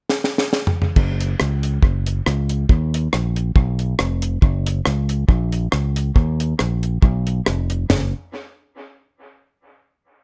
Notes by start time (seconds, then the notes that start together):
0.10 snare
0.24 snare
0.38 snare
0.53 snare
0.67 floor tom
0.82 floor tom
0.96 F#1, kick, crash
1.21 closed hi-hat
1.40 C#2, cross-stick
1.63 closed hi-hat
1.83 F#1, kick
2.06 closed hi-hat
2.26 C#2, cross-stick
2.49 closed hi-hat
2.69 D#2, kick
2.94 closed hi-hat
3.13 A#1, cross-stick
3.36 closed hi-hat
3.56 B1, kick
3.79 closed hi-hat
3.99 F1, cross-stick
4.22 closed hi-hat
4.42 F#1, kick
4.67 closed hi-hat
4.85 C#2, cross-stick
5.09 closed hi-hat
5.29 A#1, kick
5.52 closed hi-hat
5.72 C#2, cross-stick
5.96 closed hi-hat
6.16 D#2, kick
6.40 closed hi-hat
6.59 A#1, cross-stick
6.83 closed hi-hat
7.02 B1, kick
7.27 closed hi-hat
7.46 F1, cross-stick
7.70 closed hi-hat
7.90 F#1, snare, floor tom, crash